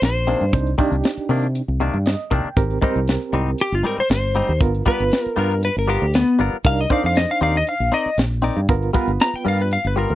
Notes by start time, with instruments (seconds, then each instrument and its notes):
0.02 fingered electric bass A#1, electric slide guitar C5, snare, closed hi-hat
0.27 clean electric guitar C3 D#3 A#3 D4, closed hi-hat
0.41 fingered electric bass G2
0.53 fingered electric bass C2, reed electric piano D4 D#4 C5, kick, closed hi-hat
0.67 closed hi-hat
0.78 clean electric guitar C3 D#3 A#3 D4, reed electric piano D4 D#4 G4, kick, closed hi-hat
0.92 fingered electric bass C2, closed hi-hat
1.04 snare, closed hi-hat
1.17 muted fingered electric bass stroke, closed hi-hat
1.29 fingered electric bass C3, clean electric guitar C3 D#3 A#3 D4, open hi-hat
1.44 closed hi-hat
1.55 closed hi-hat
1.68 fingered electric bass C2
1.80 clean electric guitar C3 D#3 A#3 D4, closed hi-hat
1.94 fingered electric bass G2
2.06 reed electric piano D#5, snare, closed hi-hat
2.20 closed hi-hat
2.31 fingered electric bass C2, clean electric guitar C3 D#3 A#3 D4, reed electric piano G5, kick, closed hi-hat
2.44 muted fingered electric bass stroke
2.56 fingered electric bass G#1, reed electric piano C4 G4 A#4, kick, closed hi-hat
2.71 closed hi-hat
2.82 clean electric guitar G#2 G3 C4 D#4, reed electric piano C4 G4 A#4, kick, closed hi-hat
2.96 fingered electric bass C2
3.08 snare, closed hi-hat
3.21 closed hi-hat
3.33 fingered electric bass C2, clean electric guitar G#2 G3 C4 D#4, closed hi-hat
3.58 electric slide guitar G4, closed hi-hat
3.72 fingered electric bass G1, electric slide guitar F4
3.83 clean electric guitar G#2 G3 C4 D#4, electric slide guitar A#4, closed hi-hat
3.98 electric slide guitar C5, muted fingered electric bass stroke
4.09 fingered electric bass G1, electric slide guitar C5, snare, closed hi-hat
4.35 clean electric guitar G#2 G3 C4 D#4, closed hi-hat
4.49 fingered electric bass D#2
4.60 fingered electric bass G1, reed electric piano B3 F4 A#4, kick, closed hi-hat
4.74 closed hi-hat
4.86 clean electric guitar G3 B3 F4 A#4, reed electric piano B3 F4 B4, electric slide guitar B4, kick, closed hi-hat
5.00 fingered electric bass G1, closed hi-hat
5.12 snare, closed hi-hat
5.23 electric slide guitar A#4, muted fingered electric bass stroke, closed hi-hat
5.36 fingered electric bass G2, clean electric guitar G3 B3 F4 A#4, electric slide guitar A#4, closed hi-hat
5.51 closed hi-hat
5.63 electric slide guitar B4, closed hi-hat
5.77 fingered electric bass G1, electric slide guitar A#4
5.88 clean electric guitar G3 B3 F4 A#4, electric slide guitar G4, closed hi-hat
6.02 fingered electric bass D2
6.14 electric slide guitar B3, snare, closed hi-hat
6.27 closed hi-hat
6.39 fingered electric bass G1, clean electric guitar G3 B3 F4 A#4, closed hi-hat
6.53 muted fingered electric bass stroke
6.65 fingered electric bass C2, reed electric piano D4 D#4 A#4, electric slide guitar F5, kick, closed hi-hat
6.79 electric slide guitar D#5, closed hi-hat
6.90 clean electric guitar C4 D#4 A#4 D5, reed electric piano D4 D#4 C5, electric slide guitar F5, kick, closed hi-hat
7.04 fingered electric bass F2, electric slide guitar F5
7.16 electric slide guitar D#5, snare, closed hi-hat
7.30 electric slide guitar F5, closed hi-hat
7.41 fingered electric bass D#2, clean electric guitar C4 D#4 A#4 D5, electric slide guitar F5, closed hi-hat
7.57 electric slide guitar D#5
7.67 electric slide guitar F5, closed hi-hat
7.80 fingered electric bass A#1
7.92 clean electric guitar C4 D#4 A#4 D5, electric slide guitar D#5, closed hi-hat
8.06 muted fingered electric bass stroke
8.18 fingered electric bass A#1, snare, closed hi-hat
8.42 clean electric guitar C4 D#4 A#4 D5, closed hi-hat
8.57 fingered electric bass G2
8.69 fingered electric bass G1, reed electric piano B3 F4 A#4, kick, closed hi-hat
8.83 closed hi-hat
8.93 clean electric guitar G3 B3 F4 A#4, reed electric piano B3 F4 B4, kick, closed hi-hat
9.07 fingered electric bass G1, closed hi-hat
9.20 electric slide guitar A#5, snare, closed hi-hat
9.34 electric slide guitar G5, muted fingered electric bass stroke, closed hi-hat
9.45 fingered electric bass G2, clean electric guitar G3 B3 F4 A#4, electric slide guitar F5, open hi-hat
9.60 electric slide guitar B4, closed hi-hat
9.71 electric slide guitar F5, closed hi-hat
9.85 fingered electric bass G1, electric slide guitar B4
9.96 clean electric guitar G3 B3 F4 A#4, electric slide guitar A#4, closed hi-hat
10.10 fingered electric bass D2